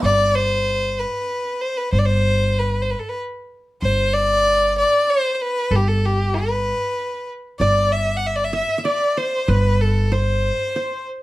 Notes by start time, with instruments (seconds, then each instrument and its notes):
0.03 upright bass G1, violin D5
0.35 violin C5
0.99 violin B4
1.61 violin C5
1.77 violin B4
1.93 upright bass G1, violin C5
1.99 violin D5
2.06 violin C5
2.59 violin B4
2.82 violin C5
2.91 violin B4
2.99 violin A4
3.09 violin B4
3.82 upright bass G1, violin C5
4.14 violin D5
4.78 violin D5
5.10 violin C5
5.34 violin C5
5.41 violin B4
5.71 upright bass G1, violin A4
5.76 violin G4
5.88 violin A4
6.05 violin G4
6.34 violin B4
7.59 upright bass G1, violin D5, qanun D5
7.92 violin E5
8.17 violin F#5
8.27 violin E5
8.36 violin D5
8.44 violin E5
8.53 qanun E5, violin E5
8.78 qanun E5
8.85 qanun D5, violin D5
9.17 qanun C5, violin C5
9.48 upright bass G1, qanun B4, violin B4
9.81 violin A4
10.12 qanun C5, violin C5
10.76 qanun C5